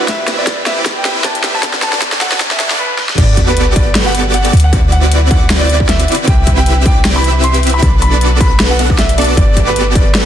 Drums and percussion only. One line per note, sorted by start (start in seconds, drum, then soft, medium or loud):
0.08 kick loud
0.08 snare medium
0.08 closed hi-hat medium
0.28 snare medium
0.28 closed hi-hat medium
0.47 kick loud
0.47 snare medium
0.47 closed hi-hat medium
0.66 snare medium
0.66 closed hi-hat medium
0.86 kick loud
0.86 snare medium
0.86 closed hi-hat medium
1.05 snare medium
1.05 closed hi-hat medium
1.24 kick loud
1.24 snare medium
1.24 closed hi-hat medium
1.35 closed hi-hat medium
1.44 snare medium
1.44 closed hi-hat medium
1.63 kick loud
1.63 snare medium
1.63 closed hi-hat medium
1.74 snare medium
1.82 snare medium
1.82 closed hi-hat medium
1.93 snare medium
2.02 kick loud
2.02 snare loud
2.02 closed hi-hat medium
2.12 snare medium
2.21 snare loud
2.21 closed hi-hat medium
2.32 snare medium
2.40 kick loud
2.40 snare loud
2.40 closed hi-hat medium
2.51 snare medium
2.60 snare loud
2.60 closed hi-hat medium
2.71 snare medium
2.99 snare medium
3.09 snare medium
3.18 kick loud
3.18 closed hi-hat medium
3.18 crash loud
3.37 kick medium
3.37 closed hi-hat medium
3.57 closed hi-hat medium
3.76 kick loud
3.76 closed hi-hat medium
3.95 snare loud
3.95 closed hi-hat medium
4.15 closed hi-hat medium
4.34 closed hi-hat medium
4.45 closed hi-hat medium
4.53 closed hi-hat medium
4.57 closed hi-hat medium
4.60 closed hi-hat medium
4.73 kick loud
4.73 closed hi-hat medium
4.92 closed hi-hat medium
5.12 closed hi-hat medium
5.31 kick loud
5.31 closed hi-hat medium
5.50 snare loud
5.50 closed hi-hat medium
5.70 closed hi-hat medium
5.80 kick medium
5.89 snare medium
5.89 closed hi-hat medium
6.00 closed hi-hat medium
6.08 closed hi-hat soft
6.12 closed hi-hat medium
6.15 closed hi-hat medium
6.28 kick loud
6.28 closed hi-hat medium
6.47 kick medium
6.47 closed hi-hat medium
6.66 closed hi-hat medium
6.86 kick loud
6.86 closed hi-hat medium
7.05 snare loud
7.05 closed hi-hat medium
7.24 closed hi-hat medium
7.44 closed hi-hat medium
7.54 closed hi-hat medium
7.63 closed hi-hat soft
7.67 closed hi-hat medium
7.70 closed hi-hat medium
7.82 kick loud
7.82 closed hi-hat medium
8.02 closed hi-hat medium
8.21 closed hi-hat medium
8.40 kick loud
8.40 closed hi-hat medium
8.60 snare loud
8.60 closed hi-hat medium
8.79 closed hi-hat medium
8.90 kick medium
8.99 snare medium
8.99 closed hi-hat medium
9.09 closed hi-hat medium
9.18 closed hi-hat soft
9.22 closed hi-hat medium
9.24 closed hi-hat medium
9.37 kick loud
9.37 closed hi-hat medium
9.57 kick medium
9.57 closed hi-hat medium
9.76 closed hi-hat medium
9.95 kick loud
9.95 closed hi-hat medium
10.15 snare loud
10.15 closed hi-hat medium